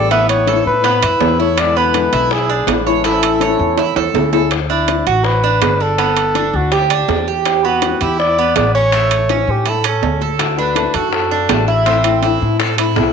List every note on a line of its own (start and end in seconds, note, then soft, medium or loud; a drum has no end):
0.00 0.60 A1 medium
0.00 0.11 D3 medium
0.00 0.11 G3 medium
0.00 0.11 B3 medium
0.00 0.10 G4 medium
0.00 0.11 A4 medium
0.00 0.10 D5 loud
0.11 0.46 E3 medium
0.11 0.46 A3 medium
0.11 0.47 B3 medium
0.11 0.48 E4 medium
0.11 0.28 E5 loud
0.11 high bongo medium
0.11 high timbale medium
0.29 0.64 C#5 loud
0.29 high bongo soft
0.29 high timbale medium
0.47 0.83 E3 medium
0.47 0.83 A3 medium
0.47 0.83 B3 medium
0.47 0.84 E4 medium
0.47 0.83 A4 medium
0.47 high bongo medium
0.47 high timbale medium
0.47 low timbale medium
0.66 1.00 A2 medium
0.66 1.36 B4 loud
0.66 high bongo soft
0.84 1.02 B3 medium
0.84 muted nylon-string guitar stroke medium
0.84 high bongo medium
0.84 high timbale medium
1.02 1.20 F#2 medium
1.02 1.38 E4 medium
1.02 high bongo soft
1.02 high timbale loud
1.21 2.07 E2 medium
1.21 1.39 E3 medium
1.21 1.39 A3 medium
1.21 1.39 B3 medium
1.21 1.37 E4 medium
1.21 high bongo medium
1.21 low bongo medium
1.21 low timbale medium
1.39 1.58 A3 medium
1.39 1.57 B3 medium
1.39 1.57 E4 medium
1.39 1.75 E4 medium
1.39 1.61 C#5 medium
1.58 1.92 B2 medium
1.58 1.93 D3 medium
1.58 1.93 G#3 medium
1.58 1.94 B3 medium
1.58 1.94 E4 medium
1.58 1.79 D5 loud
1.58 high bongo medium
1.58 high timbale medium
1.77 2.12 B3 medium
1.77 2.34 B4 loud
1.93 2.29 B2 medium
1.93 2.30 D3 medium
1.93 2.30 G#3 medium
1.93 2.30 B3 medium
1.93 2.30 E4 medium
1.93 high bongo medium
1.93 high timbale medium
1.93 low timbale medium
2.13 2.64 B1 medium
2.13 2.49 E4 medium
2.13 high timbale medium
2.30 2.69 G#4 medium
2.30 muted nylon-string guitar stroke medium
2.30 high bongo medium
2.49 2.85 D4 medium
2.67 3.54 A1 medium
2.67 2.85 D3 medium
2.67 2.86 G#3 soft
2.67 2.85 B3 medium
2.67 2.85 E4 medium
2.67 high bongo medium
2.67 low bongo medium
2.67 high timbale medium
2.67 low timbale medium
2.86 3.04 D3 medium
2.86 3.05 G#3 medium
2.86 3.04 B3 medium
2.86 3.04 E4 medium
2.86 4.11 A4 medium
2.86 3.04 C#5 medium
3.04 3.40 E3 medium
3.04 3.41 A3 medium
3.04 3.41 C#4 medium
3.04 3.41 E4 medium
3.04 3.42 E4 medium
3.04 high bongo medium
3.04 high timbale medium
3.23 high bongo soft
3.23 high timbale medium
3.41 3.77 E3 medium
3.41 3.77 A3 medium
3.41 3.78 C#4 medium
3.41 3.78 E4 medium
3.41 3.77 C#5 medium
3.41 high bongo medium
3.41 high timbale medium
3.41 low timbale medium
3.59 3.94 E2 medium
3.59 high bongo soft
3.78 3.96 E4 medium
3.78 muted nylon-string guitar stroke medium
3.78 high bongo medium
3.78 high timbale medium
3.96 4.13 E2 medium
3.96 4.32 A4 medium
3.96 high bongo loud
3.96 high timbale medium
4.14 5.01 D2 medium
4.14 4.32 E3 medium
4.14 4.33 A3 medium
4.14 4.33 C#4 medium
4.14 4.32 E4 medium
4.14 low bongo medium
4.14 low timbale medium
4.33 4.52 A3 medium
4.33 4.51 C#4 medium
4.33 4.51 E4 medium
4.33 4.51 A4 medium
4.33 low bongo medium
4.33 low timbale medium
4.51 high bongo medium
4.51 high timbale medium
4.70 5.06 D4 medium
4.70 5.09 E4 medium
4.88 high bongo medium
4.88 high timbale medium
4.88 low timbale medium
5.07 5.58 A1 medium
5.07 5.42 F#4 medium
5.07 5.27 F#4 medium
5.07 high timbale medium
5.24 5.83 B4 loud
5.24 high bongo medium
5.44 5.79 D4 medium
5.62 6.48 G1 medium
5.62 high bongo medium
5.62 low bongo medium
5.62 high timbale medium
5.62 low timbale medium
5.80 5.98 D4 medium
5.80 6.57 A4 loud
5.98 6.34 B3 medium
5.98 high bongo medium
5.98 high timbale medium
6.17 high bongo soft
6.17 high timbale medium
6.35 6.71 D4 medium
6.35 high bongo medium
6.35 high timbale medium
6.35 low timbale soft
6.53 7.05 D2 medium
6.53 6.74 F#4 medium
6.53 high bongo soft
6.72 6.90 G4 medium
6.72 6.91 G4 medium
6.72 high bongo medium
6.72 high timbale medium
6.90 7.26 D4 medium
6.90 7.25 G4 medium
6.90 high bongo soft
6.90 high timbale loud
7.08 7.95 E2 medium
7.08 high bongo medium
7.08 low bongo medium
7.08 low timbale medium
7.28 7.63 G4 medium
7.45 high bongo medium
7.45 high timbale medium
7.65 8.00 B3 medium
7.65 8.03 F#4 medium
7.82 high bongo medium
7.82 high timbale medium
7.82 low timbale medium
8.01 8.52 E2 medium
8.01 8.37 E4 medium
8.01 8.19 G4 medium
8.01 high timbale medium
8.19 8.53 D5 loud
8.19 high bongo medium
8.39 8.74 B3 medium
8.56 9.42 A1 medium
8.56 8.73 D5 loud
8.56 high bongo medium
8.56 low bongo medium
8.56 high timbale medium
8.56 low timbale medium
8.75 8.92 C#4 medium
8.75 9.52 C#5 loud
8.92 9.29 A3 medium
8.92 high bongo medium
8.92 high timbale medium
9.11 high bongo soft
9.11 high timbale medium
9.29 9.65 C#4 medium
9.29 high bongo medium
9.29 high timbale medium
9.29 low timbale medium
9.47 9.99 A2 medium
9.47 9.71 G4 medium
9.47 high bongo soft
9.66 9.84 E4 medium
9.66 9.86 A4 medium
9.66 high bongo medium
9.66 high timbale medium
9.84 10.20 C#4 medium
9.84 10.20 A4 medium
9.84 high timbale loud
10.02 10.88 D2 medium
10.02 low timbale medium
10.21 10.57 A4 medium
10.21 low bongo medium
10.39 10.57 D3 medium
10.39 10.57 A3 medium
10.39 10.57 D4 medium
10.39 10.56 F#4 medium
10.39 high bongo medium
10.39 high timbale medium
10.57 10.75 A3 soft
10.57 10.76 D4 soft
10.57 10.94 D4 medium
10.57 10.75 F#4 soft
10.57 10.96 B4 medium
10.75 11.11 D3 medium
10.75 11.12 A3 medium
10.75 11.12 D4 medium
10.75 11.12 F#4 medium
10.75 high bongo medium
10.75 high timbale medium
10.75 low timbale soft
10.94 11.46 F#2 medium
10.94 11.30 F#4 medium
10.94 11.11 A4 medium
10.94 high timbale medium
11.12 11.63 A4 medium
11.12 muted nylon-string guitar stroke medium
11.12 high bongo medium
11.31 11.49 A3 soft
11.31 11.67 D4 medium
11.31 11.49 D4 soft
11.31 11.49 F#4 soft
11.49 12.35 A1 medium
11.49 11.67 D3 medium
11.49 11.68 A3 medium
11.49 11.67 D4 medium
11.49 11.66 F#4 medium
11.49 high bongo medium
11.49 low bongo medium
11.49 high timbale medium
11.49 low timbale medium
11.67 11.86 A3 soft
11.67 11.86 D4 soft
11.67 11.86 E4 medium
11.67 11.85 F#4 soft
11.67 12.37 E5 loud
11.86 12.04 E3 medium
11.86 12.04 A3 medium
11.86 12.22 C4 medium
11.86 12.04 C4 medium
11.86 12.03 E4 medium
11.86 high bongo medium
11.86 high timbale medium
12.04 12.22 A3 soft
12.04 12.22 C4 soft
12.04 12.22 E4 medium
12.04 high bongo soft
12.04 high timbale medium
12.22 12.58 E3 medium
12.22 12.59 A3 medium
12.22 12.59 C4 medium
12.22 12.59 E4 medium
12.22 high bongo medium
12.22 high timbale medium
12.22 low timbale medium
12.41 12.93 A2 medium
12.41 high bongo soft
12.59 12.77 A4 medium
12.59 muted nylon-string guitar stroke medium
12.59 high bongo medium
12.59 high timbale medium
12.78 12.96 A3 soft
12.78 12.96 C4 soft
12.78 12.96 E4 soft
12.78 13.13 E4 medium
12.78 high bongo soft
12.78 high timbale loud
12.96 13.13 B1 medium
12.96 13.13 E3 medium
12.96 13.13 A3 medium
12.96 13.13 C4 medium
12.96 13.13 E4 medium
12.96 high bongo medium
12.96 low bongo medium
12.96 low timbale medium